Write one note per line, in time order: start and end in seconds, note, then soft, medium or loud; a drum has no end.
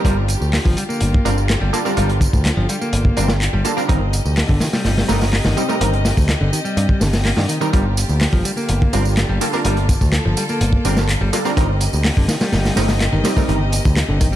0.00 3.85 G4 medium
0.05 0.35 G1 loud
0.05 3.85 D3 medium
0.05 0.16 G3 medium
0.05 0.16 D4 medium
0.05 0.16 F4 medium
0.05 3.85 F4 medium
0.05 0.16 A#4 medium
0.05 kick loud
0.05 closed hi-hat loud
0.05 tambourine soft
0.28 closed hi-hat medium
0.28 tambourine medium
0.41 0.57 D2 medium
0.41 tambourine soft
0.53 snare loud
0.53 clap loud
0.53 open hi-hat medium
0.53 tambourine soft
0.65 0.73 G1 medium
0.65 0.75 F3 medium
0.65 kick loud
0.77 0.83 G3 medium
0.77 closed hi-hat medium
0.77 tambourine medium
0.89 1.24 A#3 medium
0.89 tambourine soft
1.00 1.18 G1 loud
1.00 closed hi-hat medium
1.00 tambourine soft
1.14 kick loud
1.25 1.55 G1 loud
1.25 1.36 G3 medium
1.25 1.37 C4 medium
1.25 1.36 D4 medium
1.25 1.36 F4 medium
1.25 1.36 A#4 loud
1.25 closed hi-hat medium
1.25 tambourine medium
1.38 tambourine soft
1.49 snare loud
1.49 clap loud
1.49 closed hi-hat medium
1.49 tambourine soft
1.61 1.69 G1 medium
1.61 1.72 G3 medium
1.73 1.83 G3 medium
1.73 1.79 A#3 medium
1.73 1.83 D4 medium
1.73 1.83 F4 medium
1.73 1.83 A4 loud
1.73 closed hi-hat medium
1.73 tambourine medium
1.85 1.92 G3 loud
1.85 1.91 C4 medium
1.85 1.92 D4 medium
1.85 1.92 F4 medium
1.85 1.92 A#4 loud
1.85 tambourine soft
1.97 2.27 G1 loud
1.97 2.08 G3 medium
1.97 2.09 G3 medium
1.97 2.08 D4 medium
1.97 2.08 F4 medium
1.97 2.08 A#4 medium
1.97 closed hi-hat medium
1.97 tambourine soft
2.09 closed hi-hat soft
2.21 kick medium
2.21 closed hi-hat medium
2.21 tambourine medium
2.33 2.49 D2 medium
2.33 kick loud
2.33 tambourine soft
2.45 snare loud
2.45 clap loud
2.45 closed hi-hat medium
2.45 tambourine soft
2.57 2.65 G1 medium
2.57 2.67 F3 medium
2.69 2.75 G3 medium
2.69 closed hi-hat medium
2.69 tambourine medium
2.81 3.16 A#3 medium
2.81 tambourine soft
2.93 3.09 G1 loud
2.93 closed hi-hat loud
2.93 tambourine soft
3.05 kick medium
3.17 3.47 G1 loud
3.17 3.28 G3 medium
3.17 3.29 C4 medium
3.17 3.28 D4 medium
3.17 3.28 F4 medium
3.17 3.28 A#4 loud
3.17 closed hi-hat medium
3.17 tambourine medium
3.28 snare loud
3.28 tambourine soft
3.42 clap loud
3.42 closed hi-hat medium
3.42 tambourine soft
3.53 3.61 G1 loud
3.53 3.64 G3 medium
3.64 3.75 G3 medium
3.64 3.71 A#3 medium
3.64 3.75 D4 medium
3.64 3.75 F4 medium
3.64 3.75 A4 loud
3.64 closed hi-hat medium
3.64 tambourine medium
3.77 3.84 G3 medium
3.77 3.83 C4 medium
3.77 3.84 D4 medium
3.77 3.84 F4 medium
3.77 3.83 A#4 loud
3.77 tambourine soft
3.88 4.19 G1 loud
3.88 7.69 C3 medium
3.88 4.00 D#3 medium
3.88 4.00 G3 medium
3.88 4.00 C4 medium
3.88 4.00 D#4 medium
3.88 9.61 G4 medium
3.88 4.00 A#4 medium
3.88 7.69 D#5 medium
3.88 kick loud
3.88 closed hi-hat medium
3.88 tambourine soft
4.13 closed hi-hat medium
4.13 tambourine medium
4.25 4.41 D2 medium
4.25 tambourine soft
4.37 snare loud
4.37 clap loud
4.37 open hi-hat medium
4.37 tambourine soft
4.49 4.57 G1 medium
4.49 4.59 D3 medium
4.49 kick medium
4.60 4.67 D#3 medium
4.60 snare loud
4.60 open hi-hat medium
4.60 tambourine medium
4.73 5.08 G3 medium
4.73 snare loud
4.73 open hi-hat medium
4.73 tambourine soft
4.85 5.01 G1 loud
4.85 snare loud
4.85 open hi-hat medium
4.85 tambourine soft
4.98 snare loud
4.98 open hi-hat medium
5.08 5.39 G1 loud
5.08 5.20 G3 medium
5.08 5.21 A3 medium
5.08 5.20 C4 medium
5.08 5.20 D#4 medium
5.08 5.19 A#4 loud
5.08 snare loud
5.08 open hi-hat medium
5.08 tambourine medium
5.21 snare loud
5.21 open hi-hat medium
5.21 tambourine soft
5.32 snare loud
5.32 clap loud
5.32 open hi-hat medium
5.32 tambourine soft
5.45 5.53 G1 medium
5.45 5.56 D#3 medium
5.45 snare loud
5.45 open hi-hat medium
5.57 5.67 G3 medium
5.57 5.63 G3 medium
5.57 5.67 C4 medium
5.57 5.67 D#4 medium
5.57 5.67 G4 medium
5.57 closed hi-hat medium
5.57 tambourine medium
5.69 5.76 G3 loud
5.69 5.75 A3 medium
5.69 5.75 C4 medium
5.69 5.76 D#4 medium
5.69 5.75 A#4 loud
5.69 tambourine soft
5.81 6.11 G1 loud
5.81 5.92 D#3 medium
5.81 5.92 G3 medium
5.81 5.92 C4 medium
5.81 5.92 D#4 medium
5.81 5.92 A#4 medium
5.81 closed hi-hat loud
5.81 tambourine soft
5.93 closed hi-hat soft
6.05 snare loud
6.05 open hi-hat medium
6.05 tambourine medium
6.17 6.33 D2 medium
6.17 kick medium
6.17 tambourine soft
6.29 snare loud
6.29 clap loud
6.29 closed hi-hat medium
6.29 tambourine soft
6.41 6.49 G1 medium
6.41 6.51 D3 medium
6.53 6.59 D#3 medium
6.53 closed hi-hat medium
6.53 tambourine medium
6.65 7.00 G3 medium
6.65 tambourine soft
6.77 6.85 G2 loud
6.77 closed hi-hat medium
6.77 tambourine soft
6.89 kick medium
7.01 7.31 G1 loud
7.01 7.07 D3 medium
7.01 snare loud
7.01 open hi-hat medium
7.01 tambourine medium
7.13 snare loud
7.13 open hi-hat medium
7.13 tambourine soft
7.25 7.31 A#3 medium
7.25 snare medium
7.25 clap loud
7.25 open hi-hat medium
7.25 tambourine soft
7.37 7.45 G2 medium
7.37 7.43 D#3 medium
7.37 snare loud
7.37 open hi-hat medium
7.49 7.59 D#3 medium
7.49 closed hi-hat medium
7.49 tambourine medium
7.61 7.71 D#3 medium
7.61 7.68 G3 medium
7.61 7.68 C4 medium
7.61 7.68 D#4 medium
7.61 7.68 A#4 loud
7.61 tambourine soft
7.73 8.03 G1 loud
7.73 11.53 D3 medium
7.73 7.84 G3 medium
7.73 14.36 A#3 medium
7.73 7.84 D4 medium
7.73 7.84 F4 medium
7.73 11.53 F4 medium
7.73 7.84 A#4 medium
7.73 kick loud
7.73 closed hi-hat medium
7.73 tambourine soft
7.97 closed hi-hat medium
7.97 ride medium
7.97 tambourine medium
8.09 8.25 D2 medium
8.09 tambourine soft
8.21 snare loud
8.21 clap loud
8.21 open hi-hat medium
8.21 tambourine soft
8.33 8.41 G1 medium
8.33 8.43 F3 medium
8.33 kick medium
8.45 8.51 G3 medium
8.45 closed hi-hat medium
8.45 ride medium
8.45 tambourine medium
8.57 8.92 A#3 medium
8.57 tambourine soft
8.69 8.86 G1 loud
8.69 closed hi-hat medium
8.69 tambourine soft
8.82 kick medium
8.93 9.23 G1 loud
8.93 9.04 G3 medium
8.93 9.05 C4 medium
8.93 9.04 D4 medium
8.93 9.04 F4 medium
8.93 9.04 A#4 loud
8.93 closed hi-hat medium
8.93 ride medium
8.93 tambourine medium
9.05 tambourine soft
9.17 snare loud
9.17 clap loud
9.17 closed hi-hat medium
9.17 tambourine soft
9.29 9.37 G1 loud
9.29 9.40 G3 medium
9.41 9.51 G3 medium
9.41 9.47 A#3 medium
9.41 9.51 D4 medium
9.41 9.51 F4 medium
9.41 9.51 A4 loud
9.41 closed hi-hat medium
9.41 ride medium
9.41 tambourine medium
9.53 9.60 G3 loud
9.53 9.59 C4 medium
9.53 9.60 D4 medium
9.53 9.60 F4 medium
9.53 9.60 A#4 loud
9.53 tambourine soft
9.65 9.95 G1 loud
9.65 9.76 G3 medium
9.65 9.77 G3 medium
9.65 9.76 D4 medium
9.65 9.76 F4 medium
9.65 11.55 A4 medium
9.65 9.76 A#4 medium
9.65 closed hi-hat loud
9.65 tambourine soft
9.77 closed hi-hat soft
9.89 kick loud
9.89 closed hi-hat medium
9.89 ride medium
9.89 tambourine medium
10.01 10.17 D2 medium
10.01 kick loud
10.01 tambourine soft
10.12 snare loud
10.12 clap loud
10.12 closed hi-hat medium
10.12 tambourine soft
10.25 10.33 G1 medium
10.25 10.35 F3 medium
10.37 10.43 G3 medium
10.37 closed hi-hat medium
10.37 ride medium
10.37 tambourine medium
10.49 10.84 A#3 medium
10.49 tambourine soft
10.61 10.77 G1 loud
10.61 closed hi-hat medium
10.61 tambourine soft
10.73 kick loud
10.85 11.15 G1 loud
10.85 10.96 G3 medium
10.85 10.97 C4 medium
10.85 10.96 D4 medium
10.85 10.96 F4 medium
10.85 10.96 A#4 loud
10.85 closed hi-hat medium
10.85 ride medium
10.85 tambourine medium
10.97 snare loud
10.97 tambourine soft
11.09 clap loud
11.09 closed hi-hat medium
11.09 ride soft
11.09 tambourine soft
11.21 11.29 G1 loud
11.21 11.32 G3 medium
11.33 11.43 G3 medium
11.33 11.39 A#3 medium
11.33 11.43 D4 medium
11.33 11.43 F4 medium
11.33 11.43 A4 loud
11.33 closed hi-hat medium
11.33 ride medium
11.33 tambourine medium
11.45 11.52 G3 loud
11.45 11.51 C4 medium
11.45 11.52 D4 medium
11.45 11.52 F4 medium
11.45 11.52 A#4 loud
11.45 tambourine soft
11.57 11.87 G1 loud
11.57 14.36 C3 medium
11.57 11.68 D#3 medium
11.57 11.68 G3 medium
11.57 11.68 C4 medium
11.57 11.68 D#4 medium
11.57 14.36 G4 medium
11.57 11.68 A#4 medium
11.57 14.36 D#5 medium
11.57 kick loud
11.57 closed hi-hat medium
11.57 tambourine soft
11.81 closed hi-hat medium
11.81 ride medium
11.81 tambourine medium
11.93 12.09 D2 medium
11.93 tambourine soft
12.05 snare loud
12.05 clap loud
12.05 open hi-hat medium
12.05 tambourine soft
12.17 12.25 G1 medium
12.17 12.27 D3 medium
12.17 kick medium
12.28 12.35 D#3 medium
12.28 snare loud
12.28 open hi-hat medium
12.28 ride medium
12.28 tambourine medium
12.41 12.76 G3 medium
12.41 snare loud
12.41 open hi-hat medium
12.41 tambourine soft
12.52 12.69 G1 loud
12.52 snare loud
12.52 open hi-hat medium
12.52 tambourine soft
12.65 snare medium
12.65 open hi-hat medium
12.76 13.07 G1 loud
12.76 12.88 G3 medium
12.76 12.88 A3 medium
12.76 12.88 C4 medium
12.76 12.88 D#4 medium
12.76 12.88 A#4 loud
12.76 snare loud
12.76 open hi-hat medium
12.76 ride medium
12.76 tambourine medium
12.88 snare loud
12.88 open hi-hat medium
12.88 tambourine soft
13.00 snare loud
13.00 clap loud
13.00 closed hi-hat medium
13.00 tambourine soft
13.13 13.21 G1 loud
13.13 13.24 D#3 medium
13.24 13.31 G3 medium
13.24 13.35 G3 medium
13.24 13.35 C4 medium
13.24 13.35 D#4 medium
13.24 13.35 G4 loud
13.24 snare loud
13.24 open hi-hat medium
13.24 ride medium
13.24 tambourine medium
13.37 13.44 G3 loud
13.37 13.43 A3 medium
13.37 13.44 C4 medium
13.37 13.44 D#4 medium
13.37 13.44 A#4 loud
13.37 kick medium
13.37 tambourine soft
13.49 13.79 G1 loud
13.49 13.60 D#3 medium
13.49 13.60 G3 medium
13.49 13.60 C4 medium
13.49 13.60 D#4 medium
13.49 13.60 A#4 medium
13.49 closed hi-hat medium
13.49 tambourine soft
13.72 closed hi-hat medium
13.72 ride medium
13.72 tambourine medium
13.85 14.01 D2 medium
13.85 kick loud
13.85 tambourine soft
13.97 snare loud
13.97 clap loud
13.97 closed hi-hat medium
13.97 tambourine soft
14.09 14.36 G1 medium
14.09 14.19 D3 medium
14.20 14.27 D#3 medium
14.20 kick loud
14.20 closed hi-hat medium
14.20 ride medium
14.20 tambourine medium
14.32 14.36 G3 medium